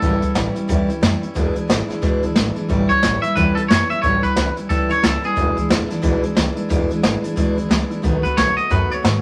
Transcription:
Already playing: clean electric guitar A4
0.01 upright bass A1, steel-string acoustic guitar A2 E3 G3 C#4 E4, kick, closed hi-hat
0.21 steel-string acoustic guitar G3 C#4 E4, muted upright bass stroke, kick, closed hi-hat
0.35 upright bass A1, steel-string acoustic guitar E3 G3 C#4 E4, snare, closed hi-hat
0.54 steel-string acoustic guitar G3 C#4 E4, muted upright bass stroke, closed hi-hat
0.68 upright bass E2, steel-string acoustic guitar A2 E3 G3 C#4 E4, kick, closed hi-hat
0.88 steel-string acoustic guitar G3 C#4 E4, muted upright bass stroke, closed hi-hat
1.01 upright bass F#2, steel-string acoustic guitar E3 G3 C#4 E4, snare, closed hi-hat
1.21 steel-string acoustic guitar G3 C#4 E4, closed hi-hat
1.35 upright bass E1, steel-string acoustic guitar E2 B2 E3 G#3 D4 E4, kick, closed hi-hat
1.54 steel-string acoustic guitar E3 G#3 D4 E4, muted upright bass stroke, closed hi-hat
1.68 upright bass G#1, steel-string acoustic guitar E3 G#3 D4 E4, snare, closed hi-hat
1.88 steel-string acoustic guitar E3 G#3 D4 E4, muted upright bass stroke, snare, closed hi-hat
2.01 upright bass G#1, steel-string acoustic guitar E2 B2 E3 G#3 D4 E4, kick, closed hi-hat
2.23 upright bass D2, steel-string acoustic guitar E3 G#3 D4 E4, closed hi-hat
2.35 upright bass G#1, steel-string acoustic guitar E3 G#3 D4 E4, snare, closed hi-hat
2.55 steel-string acoustic guitar E3 G#3 D4 E4, muted upright bass stroke, closed hi-hat
2.68 upright bass A1, steel-string acoustic guitar A2 E3 G3 C#4 E4, kick, closed hi-hat
2.88 steel-string acoustic guitar G3 C#4 E4, clean electric guitar C#5, muted upright bass stroke, kick, closed hi-hat
3.02 upright bass A1, steel-string acoustic guitar E3 G3 C#4 E4, snare, closed hi-hat
3.22 steel-string acoustic guitar G3 C#4 E4, clean electric guitar E5, closed hi-hat
3.35 upright bass E2, steel-string acoustic guitar A2 E3 G3 C#4 E4, clean electric guitar B4, kick, closed hi-hat
3.55 steel-string acoustic guitar G3 C#4 E4, clean electric guitar A4, muted upright bass stroke, closed hi-hat
3.68 upright bass F#2, steel-string acoustic guitar E3 G3 C#4 E4, clean electric guitar C#5, snare, closed hi-hat
3.89 steel-string acoustic guitar G3 C#4 E4, clean electric guitar E5, muted upright bass stroke, closed hi-hat
4.02 upright bass A1, steel-string acoustic guitar A2 E3 G3 C#4 E4, clean electric guitar C#5, kick, closed hi-hat
4.22 steel-string acoustic guitar G3 C#4 E4, clean electric guitar B4, muted upright bass stroke, kick, closed hi-hat
4.36 upright bass C#2, steel-string acoustic guitar E3 G3 C#4 E4, snare, closed hi-hat
4.56 steel-string acoustic guitar G3 C#4 E4, closed hi-hat
4.69 upright bass C#2, steel-string acoustic guitar A2 E3 G3 C#4 E4, clean electric guitar A4, kick, closed hi-hat
4.89 upright bass G1, steel-string acoustic guitar G3 C#4 E4, clean electric guitar C#5, closed hi-hat
5.02 upright bass C#2, steel-string acoustic guitar E3 G3 E4, clean electric guitar A4, snare, closed hi-hat
5.22 steel-string acoustic guitar G3 C#4 E4, clean electric guitar G#4, muted upright bass stroke, closed hi-hat
5.36 upright bass E1, steel-string acoustic guitar E2 B2 E3 G#3 D4 E4, kick, closed hi-hat
5.55 steel-string acoustic guitar E3 G#3 D4 E4, muted upright bass stroke, kick, closed hi-hat
5.69 upright bass E1, steel-string acoustic guitar E3 G#3 D4 E4, snare, closed hi-hat
5.88 steel-string acoustic guitar E3 G#3 D4 E4, muted upright bass stroke, snare, closed hi-hat
6.02 upright bass B1, steel-string acoustic guitar E2 B2 E3 G#3 D4 E4, kick, closed hi-hat
6.22 steel-string acoustic guitar E3 G#3 D4 E4, muted upright bass stroke, closed hi-hat
6.35 upright bass C#2, steel-string acoustic guitar E3 G#3 D4 E4, snare, closed hi-hat
6.55 steel-string acoustic guitar E3 G#3 D4 E4, muted upright bass stroke, closed hi-hat
6.69 upright bass E1, steel-string acoustic guitar E2 B2 E3 G#3 D4 E4, kick, closed hi-hat
6.90 steel-string acoustic guitar E3 G#3 D4 E4, muted upright bass stroke, closed hi-hat
7.02 upright bass G#1, steel-string acoustic guitar E3 G#3 D4 E4, snare, closed hi-hat
7.23 steel-string acoustic guitar E3 G#3 D4 E4, muted upright bass stroke, closed hi-hat
7.36 upright bass G#1, steel-string acoustic guitar E2 B2 E3 G#3 D4 E4, kick, closed hi-hat
7.56 upright bass D2, steel-string acoustic guitar E3 G#3 D4 E4, closed hi-hat
7.69 upright bass C#2, steel-string acoustic guitar E3 G#3 D4 E4, snare, closed hi-hat
7.90 steel-string acoustic guitar E3 G#3 D4 E4, muted upright bass stroke, closed hi-hat
8.02 upright bass B1, steel-string acoustic guitar B2 D#3 A3 B3 F#4, kick, closed hi-hat
8.22 steel-string acoustic guitar A3 B3 F#4, clean electric guitar B4, muted upright bass stroke, kick, closed hi-hat
8.36 upright bass B1, steel-string acoustic guitar D#3 A3 B3 F#4, clean electric guitar C#5, snare, closed hi-hat
8.57 steel-string acoustic guitar A3 B3 F#4, clean electric guitar D#5, muted upright bass stroke, closed hi-hat
8.69 upright bass F#2, steel-string acoustic guitar B2 D#3 A3 B3 F#4, clean electric guitar B4, kick, closed hi-hat
8.90 steel-string acoustic guitar A3 B3 F#4, clean electric guitar C#5, muted upright bass stroke, closed hi-hat
9.02 upright bass G#2, steel-string acoustic guitar D#3 A3 B3 F#4, snare, closed hi-hat

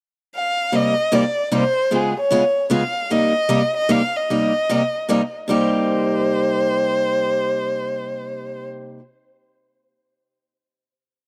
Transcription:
0.36 violin F5
0.72 steel-string acoustic guitar C3 G3 A#3 D#4 G4, violin D#5
1.12 steel-string acoustic guitar C3 G3 A#3 D#4 G4, violin D5
1.51 steel-string acoustic guitar C3 G3 A#3 D#4 G4, violin C5
1.91 steel-string acoustic guitar C#3 G#3 B3 F4 G#4
1.95 violin G#4
2.20 violin C#5
2.31 steel-string acoustic guitar C#3 G#3 B3 F4 G#4
2.70 steel-string acoustic guitar C#3 G#3 B3 F4 G#4, violin F5
3.10 steel-string acoustic guitar C3 G3 A#3 D#4 G4, violin D#5
3.49 steel-string acoustic guitar C3 G3 A#3 D#4 G4
3.77 violin D#5
3.89 steel-string acoustic guitar C3 G3 A#3 D#4 G4, violin F5
4.16 violin D#5
4.30 steel-string acoustic guitar C3 G3 A#3 D#4 G4
4.69 steel-string acoustic guitar C3 G3 A#3 D#4 G4
5.09 steel-string acoustic guitar C3 G3 A#3 D#4 G4
5.48 steel-string acoustic guitar C3 G3 A#3 D#4 G4
5.52 violin C5

